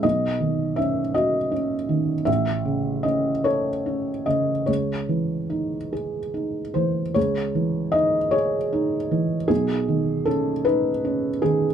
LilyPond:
<<
  \new Staff \with { instrumentName = "Felt piano" } { \time 6/8 \key cis \minor \tempo 4. = 51 dis''4 e''8 dis''8 r4 | e''4 dis''8 cis''4 dis''8 | cis''4. r4 bis'8 | cis''4 dis''8 cis''4. |
gis'4 a'8 b'4 gis'8 | }
  \new Staff \with { instrumentName = "Felt piano" } { \clef bass \time 6/8 \key cis \minor b,,8 dis8 cis'8 fis'8 cis'8 dis8 | a,,8 cis8 cis'8 a'8 cis'8 cis8 | cis,8 e8 dis'8 gis'8 dis'8 e8 | cis,8 e8 dis'8 gis'8 dis'8 e8 |
b,,8 dis8 cis'8 dis'8 cis'8 dis8 | }
>>